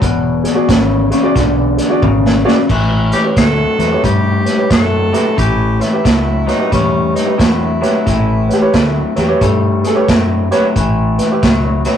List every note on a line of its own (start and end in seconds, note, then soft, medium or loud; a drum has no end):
0.01 0.43 E1 medium
0.01 0.64 E2 medium
0.01 0.64 B2 medium
0.01 kick medium
0.01 closed hi-hat medium
0.44 0.50 G#4 medium
0.44 0.51 D5 medium
0.44 snare soft
0.44 closed hi-hat medium
0.55 0.68 F#4 medium
0.55 0.68 G#4 medium
0.55 0.68 D5 medium
0.68 1.10 G#1 medium
0.68 1.07 E2 medium
0.68 1.07 C#3 medium
0.68 kick medium
0.68 snare loud
0.68 closed hi-hat medium
1.10 1.33 E2 medium
1.10 1.33 C#3 medium
1.10 1.17 G#4 medium
1.10 1.17 D5 medium
1.10 snare soft
1.10 closed hi-hat medium
1.23 1.36 F#4 medium
1.23 1.36 G#4 medium
1.23 1.36 D5 medium
1.35 1.77 B1 medium
1.35 1.97 E2 medium
1.35 1.98 D3 medium
1.35 kick medium
1.35 snare soft
1.35 closed hi-hat medium
1.77 1.84 G#4 medium
1.77 1.84 D5 medium
1.77 snare soft
1.77 closed hi-hat medium
1.89 2.02 F#4 medium
1.89 2.02 G#4 medium
1.89 2.03 D5 medium
2.02 2.44 G#1 medium
2.02 2.41 E2 medium
2.02 2.41 C#3 loud
2.02 kick medium
2.02 high tom medium
2.26 snare medium
2.45 2.67 E2 medium
2.45 2.67 C#3 medium
2.45 2.57 F#4 medium
2.45 2.57 G#4 medium
2.45 2.58 D5 loud
2.45 snare medium
2.69 3.11 A1 medium
2.69 3.32 A2 medium
2.69 3.32 E3 medium
2.69 kick medium
2.69 crash medium
3.12 3.24 G4 medium
3.12 3.18 B4 soft
3.12 3.19 C#5 soft
3.12 snare soft
3.12 closed hi-hat medium
3.24 3.37 G4 medium
3.24 3.37 B4 medium
3.24 3.37 C#5 medium
3.37 3.63 D2 medium
3.37 3.75 A2 medium
3.37 3.76 F#3 medium
3.37 4.00 A4 loud
3.37 kick medium
3.37 snare loud
3.37 closed hi-hat medium
3.78 3.94 E2 medium
3.78 4.01 A2 medium
3.78 4.01 F#3 medium
3.78 3.85 B4 soft
3.78 3.86 E5 soft
3.78 snare soft
3.78 closed hi-hat medium
3.92 4.04 G4 medium
3.92 4.04 B4 medium
3.92 4.04 C#5 medium
4.03 4.45 G2 medium
4.03 4.66 A2 medium
4.03 4.66 G3 medium
4.03 4.67 G4 medium
4.03 kick medium
4.03 closed hi-hat medium
4.46 4.52 B4 soft
4.46 4.52 C#5 soft
4.46 snare soft
4.46 closed hi-hat medium
4.58 4.71 G4 medium
4.58 4.71 B4 medium
4.58 4.71 C#5 medium
4.70 5.12 F#2 medium
4.70 5.09 A2 medium
4.70 5.09 F#3 medium
4.70 5.35 A4 medium
4.70 kick medium
4.70 snare loud
4.70 closed hi-hat medium
5.12 5.35 A2 medium
5.12 5.35 F#3 medium
5.12 5.25 G4 medium
5.12 5.26 B4 medium
5.12 5.26 E5 medium
5.12 snare soft
5.12 closed hi-hat medium
5.37 5.79 A1 loud
5.37 6.00 A2 medium
5.37 6.00 E3 medium
5.37 5.83 G4 medium
5.37 kick medium
5.37 closed hi-hat medium
5.80 6.49 E4 medium
5.80 5.86 B4 soft
5.80 5.87 C#5 soft
5.80 snare soft
5.80 closed hi-hat medium
5.93 6.05 G4 medium
5.93 6.05 B4 medium
5.93 6.05 E5 medium
6.04 6.46 C#2 medium
6.04 6.43 A2 medium
6.04 6.43 F#3 medium
6.04 kick medium
6.04 snare loud
6.04 closed hi-hat medium
6.46 6.69 A2 medium
6.46 6.70 F#3 medium
6.46 6.72 D#4 medium
6.46 6.54 B4 soft
6.46 6.54 C#5 soft
6.46 snare soft
6.46 closed hi-hat medium
6.59 6.72 G4 medium
6.59 6.72 B4 medium
6.59 6.72 E5 medium
6.71 7.13 E2 loud
6.71 7.34 A2 medium
6.71 7.34 G3 medium
6.71 7.13 C#4 medium
6.71 kick medium
6.71 snare soft
6.71 closed hi-hat medium
7.14 7.41 D#4 medium
7.14 7.21 B4 soft
7.14 7.21 C#5 soft
7.14 snare soft
7.14 closed hi-hat medium
7.26 7.39 G4 medium
7.26 7.39 B4 medium
7.26 7.39 E5 medium
7.38 7.81 E2 medium
7.38 7.77 A2 medium
7.38 7.77 F#3 medium
7.38 9.41 E4 medium
7.38 kick medium
7.38 snare loud
7.38 closed hi-hat medium
7.81 8.04 A2 medium
7.81 8.04 F#3 medium
7.81 7.94 G4 medium
7.81 7.95 B4 medium
7.81 7.95 C#5 medium
7.81 snare soft
7.81 closed hi-hat medium
8.06 8.48 A1 loud
8.06 8.69 A2 medium
8.06 8.69 E3 medium
8.06 kick medium
8.06 snare soft
8.06 closed hi-hat medium
8.48 8.54 F#4 medium
8.48 8.55 B4 medium
8.48 8.56 C#5 soft
8.48 snare soft
8.48 closed hi-hat medium
8.53 8.74 G4 medium
8.62 8.74 G4 medium
8.62 8.74 B4 medium
8.62 8.74 C#5 medium
8.73 9.00 D2 medium
8.73 9.12 A2 medium
8.73 9.13 F#3 medium
8.73 9.17 A4 medium
8.73 kick medium
8.73 snare loud
8.73 closed hi-hat medium
9.16 9.32 E2 medium
9.16 9.39 A2 medium
9.16 9.39 F#3 medium
9.16 9.41 G4 medium
9.16 9.22 B4 medium
9.16 9.23 C#5 medium
9.16 snare soft
9.16 closed hi-hat medium
9.28 9.41 G4 medium
9.28 9.41 B4 medium
9.28 9.41 C#5 medium
9.41 9.83 G2 medium
9.41 10.04 A2 medium
9.41 10.04 G3 medium
9.41 9.85 A4 medium
9.41 kick medium
9.41 closed hi-hat medium
9.84 9.89 G#4 medium
9.84 10.22 A4 loud
9.84 9.90 B4 soft
9.84 9.90 E5 soft
9.84 snare soft
9.84 closed hi-hat medium
9.96 10.08 G4 medium
9.96 10.08 B4 medium
9.96 10.09 C#5 medium
10.08 10.50 F#2 medium
10.08 10.47 A2 medium
10.08 10.47 F#3 medium
10.08 kick medium
10.08 snare loud
10.08 closed hi-hat medium
10.51 10.74 A2 medium
10.51 10.74 F#3 medium
10.51 10.63 G4 medium
10.51 10.64 B4 medium
10.51 10.64 C#5 loud
10.51 snare soft
10.51 closed hi-hat medium
10.76 11.17 A1 medium
10.76 11.38 A2 medium
10.76 11.38 E3 medium
10.76 kick medium
10.76 closed hi-hat medium
11.19 11.25 B4 medium
11.19 11.25 E5 medium
11.19 snare soft
11.19 closed hi-hat medium
11.31 11.43 G4 medium
11.31 11.43 B4 medium
11.31 11.44 E5 medium
11.42 11.84 C#2 medium
11.42 11.81 A2 medium
11.42 11.81 F#3 medium
11.42 kick medium
11.42 snare loud
11.42 closed hi-hat medium
11.85 11.97 A2 medium
11.85 11.97 F#3 medium
11.85 11.92 B4 medium
11.85 11.92 C#5 medium
11.85 snare soft
11.85 closed hi-hat medium